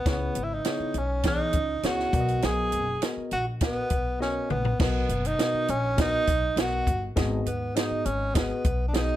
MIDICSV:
0, 0, Header, 1, 6, 480
1, 0, Start_track
1, 0, Key_signature, 5, "major"
1, 0, Tempo, 592300
1, 50, Time_signature, 4, 2, 24, 8
1, 7426, End_track
2, 0, Start_track
2, 0, Title_t, "Tine electric piano"
2, 0, Program_c, 0, 4
2, 49, Note_on_c, 0, 49, 58
2, 50, Note_on_c, 0, 59, 66
2, 51, Note_on_c, 0, 64, 59
2, 54, Note_on_c, 0, 68, 55
2, 54, Note_on_c, 0, 73, 77
2, 302, Note_off_c, 0, 59, 0
2, 303, Note_off_c, 0, 64, 0
2, 304, Note_off_c, 0, 68, 0
2, 304, Note_off_c, 0, 73, 0
2, 530, Note_on_c, 0, 59, 68
2, 530, Note_on_c, 0, 64, 55
2, 532, Note_on_c, 0, 68, 60
2, 534, Note_on_c, 0, 73, 64
2, 737, Note_off_c, 0, 49, 0
2, 782, Note_off_c, 0, 59, 0
2, 782, Note_off_c, 0, 64, 0
2, 783, Note_off_c, 0, 68, 0
2, 784, Note_off_c, 0, 73, 0
2, 1013, Note_on_c, 0, 59, 65
2, 1015, Note_on_c, 0, 52, 58
2, 1015, Note_on_c, 0, 68, 58
2, 1018, Note_on_c, 0, 73, 70
2, 1264, Note_off_c, 0, 59, 0
2, 1265, Note_off_c, 0, 52, 0
2, 1265, Note_off_c, 0, 68, 0
2, 1266, Note_off_c, 0, 73, 0
2, 1488, Note_on_c, 0, 59, 65
2, 1488, Note_on_c, 0, 64, 60
2, 1489, Note_on_c, 0, 68, 60
2, 1493, Note_on_c, 0, 73, 67
2, 1719, Note_off_c, 0, 59, 0
2, 1729, Note_off_c, 0, 64, 0
2, 1729, Note_on_c, 0, 59, 69
2, 1729, Note_on_c, 0, 66, 58
2, 1730, Note_off_c, 0, 68, 0
2, 1732, Note_off_c, 0, 73, 0
2, 1732, Note_on_c, 0, 47, 57
2, 1735, Note_on_c, 0, 70, 62
2, 1736, Note_on_c, 0, 74, 58
2, 1786, Note_off_c, 0, 74, 0
2, 1786, Note_on_c, 0, 75, 76
2, 2306, Note_off_c, 0, 59, 0
2, 2306, Note_off_c, 0, 66, 0
2, 2309, Note_off_c, 0, 70, 0
2, 2334, Note_off_c, 0, 75, 0
2, 2419, Note_off_c, 0, 47, 0
2, 2449, Note_on_c, 0, 59, 63
2, 2450, Note_on_c, 0, 66, 58
2, 2450, Note_on_c, 0, 70, 62
2, 2452, Note_on_c, 0, 75, 75
2, 2702, Note_off_c, 0, 59, 0
2, 2703, Note_off_c, 0, 66, 0
2, 2703, Note_off_c, 0, 70, 0
2, 2703, Note_off_c, 0, 75, 0
2, 2931, Note_on_c, 0, 59, 59
2, 2932, Note_on_c, 0, 70, 58
2, 2933, Note_on_c, 0, 66, 58
2, 2934, Note_on_c, 0, 75, 71
2, 3183, Note_off_c, 0, 59, 0
2, 3184, Note_off_c, 0, 66, 0
2, 3184, Note_off_c, 0, 70, 0
2, 3185, Note_off_c, 0, 75, 0
2, 3403, Note_on_c, 0, 59, 61
2, 3405, Note_on_c, 0, 66, 59
2, 3407, Note_on_c, 0, 75, 76
2, 3408, Note_on_c, 0, 70, 59
2, 3659, Note_off_c, 0, 59, 0
2, 3660, Note_off_c, 0, 66, 0
2, 3661, Note_off_c, 0, 75, 0
2, 3662, Note_off_c, 0, 70, 0
2, 3889, Note_on_c, 0, 70, 65
2, 3890, Note_on_c, 0, 47, 57
2, 3890, Note_on_c, 0, 59, 69
2, 3890, Note_on_c, 0, 66, 63
2, 3895, Note_on_c, 0, 75, 76
2, 4142, Note_off_c, 0, 70, 0
2, 4143, Note_off_c, 0, 59, 0
2, 4143, Note_off_c, 0, 66, 0
2, 4145, Note_off_c, 0, 75, 0
2, 4365, Note_on_c, 0, 70, 59
2, 4366, Note_on_c, 0, 59, 72
2, 4368, Note_on_c, 0, 66, 62
2, 4370, Note_on_c, 0, 75, 68
2, 4578, Note_off_c, 0, 47, 0
2, 4620, Note_off_c, 0, 70, 0
2, 4621, Note_off_c, 0, 59, 0
2, 4622, Note_off_c, 0, 66, 0
2, 4623, Note_off_c, 0, 75, 0
2, 4840, Note_on_c, 0, 59, 71
2, 4843, Note_on_c, 0, 66, 59
2, 4845, Note_on_c, 0, 70, 61
2, 4846, Note_on_c, 0, 75, 77
2, 5098, Note_off_c, 0, 59, 0
2, 5099, Note_off_c, 0, 66, 0
2, 5100, Note_off_c, 0, 70, 0
2, 5101, Note_off_c, 0, 75, 0
2, 5322, Note_on_c, 0, 59, 64
2, 5323, Note_on_c, 0, 66, 57
2, 5327, Note_on_c, 0, 70, 62
2, 5328, Note_on_c, 0, 75, 72
2, 5579, Note_off_c, 0, 59, 0
2, 5579, Note_off_c, 0, 66, 0
2, 5581, Note_off_c, 0, 70, 0
2, 5582, Note_off_c, 0, 75, 0
2, 5802, Note_on_c, 0, 59, 86
2, 5804, Note_on_c, 0, 66, 78
2, 5806, Note_on_c, 0, 44, 69
2, 5806, Note_on_c, 0, 68, 81
2, 5808, Note_on_c, 0, 75, 91
2, 6059, Note_off_c, 0, 59, 0
2, 6060, Note_off_c, 0, 66, 0
2, 6060, Note_off_c, 0, 68, 0
2, 6062, Note_off_c, 0, 75, 0
2, 6288, Note_on_c, 0, 59, 66
2, 6292, Note_on_c, 0, 66, 56
2, 6293, Note_on_c, 0, 75, 77
2, 6294, Note_on_c, 0, 68, 59
2, 6496, Note_off_c, 0, 44, 0
2, 6542, Note_off_c, 0, 59, 0
2, 6543, Note_off_c, 0, 66, 0
2, 6544, Note_off_c, 0, 68, 0
2, 6544, Note_off_c, 0, 75, 0
2, 6763, Note_on_c, 0, 59, 62
2, 6764, Note_on_c, 0, 68, 62
2, 6765, Note_on_c, 0, 66, 61
2, 6767, Note_on_c, 0, 75, 74
2, 7019, Note_off_c, 0, 59, 0
2, 7019, Note_off_c, 0, 68, 0
2, 7020, Note_off_c, 0, 66, 0
2, 7021, Note_off_c, 0, 75, 0
2, 7241, Note_on_c, 0, 59, 73
2, 7241, Note_on_c, 0, 66, 55
2, 7243, Note_on_c, 0, 68, 61
2, 7243, Note_on_c, 0, 75, 72
2, 7426, Note_off_c, 0, 59, 0
2, 7426, Note_off_c, 0, 66, 0
2, 7426, Note_off_c, 0, 68, 0
2, 7426, Note_off_c, 0, 75, 0
2, 7426, End_track
3, 0, Start_track
3, 0, Title_t, "Tenor saxophone"
3, 0, Program_c, 1, 66
3, 80, Note_on_c, 1, 59, 76
3, 356, Note_on_c, 1, 64, 65
3, 368, Note_off_c, 1, 59, 0
3, 438, Note_on_c, 1, 63, 88
3, 450, Note_off_c, 1, 64, 0
3, 794, Note_on_c, 1, 61, 73
3, 806, Note_off_c, 1, 63, 0
3, 1022, Note_off_c, 1, 61, 0
3, 1031, Note_on_c, 1, 63, 87
3, 1509, Note_on_c, 1, 66, 87
3, 1521, Note_off_c, 1, 63, 0
3, 1988, Note_on_c, 1, 68, 86
3, 2000, Note_off_c, 1, 66, 0
3, 2479, Note_off_c, 1, 68, 0
3, 2697, Note_on_c, 1, 66, 81
3, 2803, Note_off_c, 1, 66, 0
3, 2939, Note_on_c, 1, 59, 93
3, 3383, Note_off_c, 1, 59, 0
3, 3419, Note_on_c, 1, 61, 78
3, 3638, Note_off_c, 1, 61, 0
3, 3657, Note_on_c, 1, 59, 74
3, 3878, Note_off_c, 1, 59, 0
3, 3895, Note_on_c, 1, 59, 84
3, 4268, Note_on_c, 1, 63, 96
3, 4280, Note_off_c, 1, 59, 0
3, 4617, Note_on_c, 1, 61, 83
3, 4629, Note_off_c, 1, 63, 0
3, 4854, Note_off_c, 1, 61, 0
3, 4874, Note_on_c, 1, 63, 98
3, 5355, Note_on_c, 1, 66, 93
3, 5367, Note_off_c, 1, 63, 0
3, 5703, Note_off_c, 1, 66, 0
3, 6056, Note_on_c, 1, 59, 70
3, 6289, Note_on_c, 1, 63, 84
3, 6301, Note_off_c, 1, 59, 0
3, 6526, Note_on_c, 1, 61, 70
3, 6538, Note_off_c, 1, 63, 0
3, 6767, Note_on_c, 1, 59, 82
3, 6779, Note_off_c, 1, 61, 0
3, 7191, Note_off_c, 1, 59, 0
3, 7197, Note_on_c, 1, 62, 63
3, 7249, Note_on_c, 1, 63, 94
3, 7261, Note_off_c, 1, 62, 0
3, 7426, Note_off_c, 1, 63, 0
3, 7426, End_track
4, 0, Start_track
4, 0, Title_t, "Upright bass"
4, 0, Program_c, 2, 32
4, 46, Note_on_c, 2, 37, 92
4, 230, Note_off_c, 2, 37, 0
4, 285, Note_on_c, 2, 32, 81
4, 470, Note_off_c, 2, 32, 0
4, 764, Note_on_c, 2, 35, 70
4, 1132, Note_off_c, 2, 35, 0
4, 1243, Note_on_c, 2, 37, 80
4, 1428, Note_off_c, 2, 37, 0
4, 1487, Note_on_c, 2, 37, 75
4, 1671, Note_off_c, 2, 37, 0
4, 1725, Note_on_c, 2, 35, 98
4, 1909, Note_off_c, 2, 35, 0
4, 1971, Note_on_c, 2, 35, 98
4, 2207, Note_on_c, 2, 30, 76
4, 2219, Note_off_c, 2, 35, 0
4, 2391, Note_off_c, 2, 30, 0
4, 2688, Note_on_c, 2, 34, 81
4, 3054, Note_off_c, 2, 34, 0
4, 3166, Note_on_c, 2, 35, 82
4, 3533, Note_off_c, 2, 35, 0
4, 3648, Note_on_c, 2, 34, 89
4, 3832, Note_off_c, 2, 34, 0
4, 3885, Note_on_c, 2, 35, 94
4, 4070, Note_off_c, 2, 35, 0
4, 4125, Note_on_c, 2, 30, 77
4, 4310, Note_off_c, 2, 30, 0
4, 4610, Note_on_c, 2, 34, 80
4, 4976, Note_off_c, 2, 34, 0
4, 5087, Note_on_c, 2, 35, 85
4, 5271, Note_off_c, 2, 35, 0
4, 5317, Note_on_c, 2, 35, 80
4, 5505, Note_off_c, 2, 35, 0
4, 5565, Note_on_c, 2, 31, 82
4, 5750, Note_off_c, 2, 31, 0
4, 5808, Note_on_c, 2, 32, 104
4, 5992, Note_off_c, 2, 32, 0
4, 6045, Note_on_c, 2, 39, 73
4, 6230, Note_off_c, 2, 39, 0
4, 6528, Note_on_c, 2, 32, 76
4, 6894, Note_off_c, 2, 32, 0
4, 7007, Note_on_c, 2, 35, 82
4, 7373, Note_off_c, 2, 35, 0
4, 7426, End_track
5, 0, Start_track
5, 0, Title_t, "Muted upright bass strokes"
5, 646, Note_on_c, 9, 29, 41
5, 727, Note_off_c, 9, 29, 0
5, 2568, Note_on_c, 9, 29, 37
5, 2649, Note_off_c, 9, 29, 0
5, 4488, Note_on_c, 9, 29, 41
5, 4569, Note_off_c, 9, 29, 0
5, 6406, Note_on_c, 9, 29, 38
5, 6487, Note_off_c, 9, 29, 0
5, 7426, End_track
6, 0, Start_track
6, 0, Title_t, "Drums"
6, 47, Note_on_c, 9, 36, 109
6, 47, Note_on_c, 9, 42, 70
6, 54, Note_on_c, 9, 38, 88
6, 128, Note_off_c, 9, 36, 0
6, 128, Note_off_c, 9, 42, 0
6, 135, Note_off_c, 9, 38, 0
6, 284, Note_on_c, 9, 42, 61
6, 365, Note_off_c, 9, 42, 0
6, 523, Note_on_c, 9, 42, 87
6, 532, Note_on_c, 9, 38, 96
6, 604, Note_off_c, 9, 42, 0
6, 613, Note_off_c, 9, 38, 0
6, 762, Note_on_c, 9, 42, 56
6, 843, Note_off_c, 9, 42, 0
6, 1000, Note_on_c, 9, 42, 88
6, 1006, Note_on_c, 9, 36, 86
6, 1016, Note_on_c, 9, 38, 116
6, 1081, Note_off_c, 9, 42, 0
6, 1087, Note_off_c, 9, 36, 0
6, 1097, Note_off_c, 9, 38, 0
6, 1238, Note_on_c, 9, 42, 67
6, 1246, Note_on_c, 9, 36, 79
6, 1319, Note_off_c, 9, 42, 0
6, 1327, Note_off_c, 9, 36, 0
6, 1486, Note_on_c, 9, 42, 77
6, 1497, Note_on_c, 9, 38, 97
6, 1567, Note_off_c, 9, 42, 0
6, 1578, Note_off_c, 9, 38, 0
6, 1618, Note_on_c, 9, 38, 33
6, 1699, Note_off_c, 9, 38, 0
6, 1728, Note_on_c, 9, 36, 94
6, 1729, Note_on_c, 9, 42, 62
6, 1809, Note_off_c, 9, 36, 0
6, 1810, Note_off_c, 9, 42, 0
6, 1851, Note_on_c, 9, 42, 39
6, 1932, Note_off_c, 9, 42, 0
6, 1964, Note_on_c, 9, 42, 70
6, 1971, Note_on_c, 9, 38, 87
6, 2045, Note_off_c, 9, 42, 0
6, 2052, Note_off_c, 9, 38, 0
6, 2204, Note_on_c, 9, 42, 55
6, 2285, Note_off_c, 9, 42, 0
6, 2445, Note_on_c, 9, 42, 87
6, 2454, Note_on_c, 9, 38, 106
6, 2526, Note_off_c, 9, 42, 0
6, 2535, Note_off_c, 9, 38, 0
6, 2683, Note_on_c, 9, 42, 54
6, 2764, Note_off_c, 9, 42, 0
6, 2922, Note_on_c, 9, 42, 86
6, 2928, Note_on_c, 9, 36, 88
6, 2938, Note_on_c, 9, 38, 109
6, 3003, Note_off_c, 9, 42, 0
6, 3009, Note_off_c, 9, 36, 0
6, 3019, Note_off_c, 9, 38, 0
6, 3160, Note_on_c, 9, 42, 69
6, 3166, Note_on_c, 9, 36, 72
6, 3241, Note_off_c, 9, 42, 0
6, 3248, Note_off_c, 9, 36, 0
6, 3416, Note_on_c, 9, 38, 50
6, 3497, Note_off_c, 9, 38, 0
6, 3649, Note_on_c, 9, 45, 78
6, 3730, Note_off_c, 9, 45, 0
6, 3767, Note_on_c, 9, 43, 72
6, 3848, Note_off_c, 9, 43, 0
6, 3888, Note_on_c, 9, 49, 76
6, 3889, Note_on_c, 9, 36, 103
6, 3895, Note_on_c, 9, 38, 91
6, 3969, Note_off_c, 9, 49, 0
6, 3970, Note_off_c, 9, 36, 0
6, 3976, Note_off_c, 9, 38, 0
6, 4127, Note_on_c, 9, 42, 57
6, 4208, Note_off_c, 9, 42, 0
6, 4252, Note_on_c, 9, 42, 46
6, 4333, Note_off_c, 9, 42, 0
6, 4370, Note_on_c, 9, 42, 83
6, 4378, Note_on_c, 9, 38, 102
6, 4451, Note_off_c, 9, 42, 0
6, 4459, Note_off_c, 9, 38, 0
6, 4606, Note_on_c, 9, 42, 62
6, 4687, Note_off_c, 9, 42, 0
6, 4846, Note_on_c, 9, 42, 87
6, 4849, Note_on_c, 9, 36, 90
6, 4861, Note_on_c, 9, 38, 109
6, 4927, Note_off_c, 9, 42, 0
6, 4930, Note_off_c, 9, 36, 0
6, 4942, Note_off_c, 9, 38, 0
6, 5083, Note_on_c, 9, 42, 76
6, 5088, Note_on_c, 9, 36, 79
6, 5165, Note_off_c, 9, 42, 0
6, 5169, Note_off_c, 9, 36, 0
6, 5325, Note_on_c, 9, 42, 85
6, 5336, Note_on_c, 9, 38, 104
6, 5406, Note_off_c, 9, 42, 0
6, 5417, Note_off_c, 9, 38, 0
6, 5567, Note_on_c, 9, 36, 77
6, 5569, Note_on_c, 9, 42, 63
6, 5648, Note_off_c, 9, 36, 0
6, 5650, Note_off_c, 9, 42, 0
6, 5807, Note_on_c, 9, 42, 74
6, 5809, Note_on_c, 9, 36, 107
6, 5814, Note_on_c, 9, 38, 92
6, 5888, Note_off_c, 9, 42, 0
6, 5890, Note_off_c, 9, 36, 0
6, 5895, Note_off_c, 9, 38, 0
6, 6049, Note_on_c, 9, 42, 58
6, 6130, Note_off_c, 9, 42, 0
6, 6292, Note_on_c, 9, 42, 92
6, 6301, Note_on_c, 9, 38, 98
6, 6373, Note_off_c, 9, 42, 0
6, 6382, Note_off_c, 9, 38, 0
6, 6528, Note_on_c, 9, 42, 53
6, 6609, Note_off_c, 9, 42, 0
6, 6767, Note_on_c, 9, 42, 89
6, 6769, Note_on_c, 9, 36, 87
6, 6783, Note_on_c, 9, 38, 113
6, 6848, Note_off_c, 9, 42, 0
6, 6850, Note_off_c, 9, 36, 0
6, 6864, Note_off_c, 9, 38, 0
6, 7006, Note_on_c, 9, 42, 72
6, 7008, Note_on_c, 9, 36, 78
6, 7087, Note_off_c, 9, 42, 0
6, 7089, Note_off_c, 9, 36, 0
6, 7247, Note_on_c, 9, 42, 78
6, 7259, Note_on_c, 9, 38, 110
6, 7328, Note_off_c, 9, 42, 0
6, 7340, Note_off_c, 9, 38, 0
6, 7426, End_track
0, 0, End_of_file